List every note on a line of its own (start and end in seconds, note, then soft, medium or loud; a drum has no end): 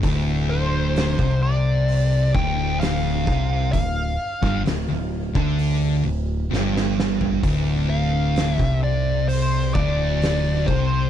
0.03 1.15 D1 loud
0.03 1.17 D2 loud
0.03 kick loud
0.03 open hi-hat medium
0.50 1.42 C5 medium
0.96 snare loud
0.96 open hi-hat soft
1.19 2.31 C2 loud
1.19 2.33 C3 loud
1.19 kick loud
1.43 2.31 D5 medium
1.88 open hi-hat medium
2.34 3.23 D1 loud
2.34 3.26 D2 loud
2.34 2.80 G5 loud
2.34 kick loud
2.80 3.71 F5 medium
2.80 snare loud
2.80 open hi-hat medium
3.26 3.70 C2 medium
3.26 3.72 C3 loud
3.26 kick loud
3.26 snare soft
3.72 4.16 D1 medium
3.72 4.10 D2 medium
3.72 4.61 F5 medium
3.72 kick medium
3.72 open hi-hat medium
4.42 4.64 G1 loud
4.42 4.64 G2 loud
4.42 kick loud
4.42 snare soft
4.64 4.88 D1 medium
4.64 4.87 D2 medium
4.64 snare loud
4.64 open hi-hat medium
4.88 5.32 D1 medium
4.88 5.26 D2 medium
5.34 6.01 D2 loud
5.34 6.03 D3 loud
5.34 kick loud
5.59 open hi-hat medium
6.04 6.48 D1 medium
6.04 6.42 D2 medium
6.50 7.40 G1 loud
6.50 7.42 G2 loud
6.50 snare medium
6.77 snare medium
7.00 snare medium
7.21 floor tom medium
7.43 8.55 D1 medium
7.43 8.58 D2 loud
7.43 kick loud
7.43 open hi-hat medium
7.90 8.50 F5 loud
8.36 snare medium
8.36 open hi-hat medium
8.50 8.78 E5 loud
8.58 9.71 C2 loud
8.58 9.73 C3 loud
8.58 kick loud
8.83 9.28 D5 loud
9.28 9.74 C5 loud
9.28 open hi-hat medium
9.74 10.64 D1 medium
9.74 10.66 D2 loud
9.74 10.66 D5 medium
9.74 kick loud
10.22 snare loud
10.22 open hi-hat medium
10.67 11.10 C2 medium
10.67 11.10 C3 loud
10.67 11.10 C5 loud
10.67 kick loud